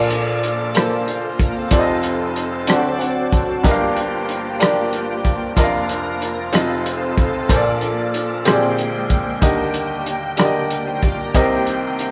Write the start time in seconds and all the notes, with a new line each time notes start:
Already playing: A#1 A#2 F3 A#3 D4 F4 A4 D5
0.10 closed hi-hat
0.43 closed hi-hat
0.75 A#3 F4 A4 C5, cross-stick, closed hi-hat
1.08 F4 D5, closed hi-hat
1.25 C5
1.40 D4 A#4, kick, closed hi-hat
1.57 C4 A4
1.71 F1 F2 F3 C4 D#4 F4 A4 D5, kick, closed hi-hat
1.79 D#5
2.03 closed hi-hat
2.36 closed hi-hat
2.67 D2 D3 F#3 C4 D4 F4 F#4 G#4 A4 D5, cross-stick, closed hi-hat
2.73 F#4 A4
2.99 F#5, closed hi-hat
3.33 A5, kick, closed hi-hat
3.63 G1 G2 F3 A#3 D4 F4 G4 A#4 D#5, kick, closed hi-hat
3.71 F5
3.96 closed hi-hat
4.29 closed hi-hat
4.59 D4 G4 A#4 D5, cross-stick, closed hi-hat
4.93 closed hi-hat
5.25 kick, closed hi-hat
5.56 F1 F2 F3 A#3 D4 F4 A#4 D#5, kick, closed hi-hat
5.64 F5
5.89 closed hi-hat
6.22 closed hi-hat
6.52 F1 F2 F3 C4 D#4 F4 A4 D#5, cross-stick, closed hi-hat
6.86 closed hi-hat
7.18 kick, closed hi-hat
7.47 A#1 A#2 F3 A#3 D4 F4 G#4 A4 C5, kick, closed hi-hat
7.56 A4 D5
7.81 closed hi-hat
8.14 closed hi-hat
8.45 A#1 A#2 C#3 G#3 A#3 C4 G4 G#4 C5 G5, cross-stick, closed hi-hat
8.52 D3 D5
8.79 closed hi-hat
9.10 kick, closed hi-hat
9.41 D#2 D3 D#3 G3 A#3 G4 A#4 D#5, kick, closed hi-hat
9.74 closed hi-hat
10.06 closed hi-hat
10.37 D3 G4 A#4 D5, cross-stick, closed hi-hat
10.45 D#5
10.70 closed hi-hat
10.87 D#4 C5
11.02 F4 D5, kick, closed hi-hat
11.19 D4 A#4
11.34 C2 C3 D#3 A#3 C4 G4 A#4 D#5, kick, closed hi-hat
11.66 closed hi-hat
11.99 closed hi-hat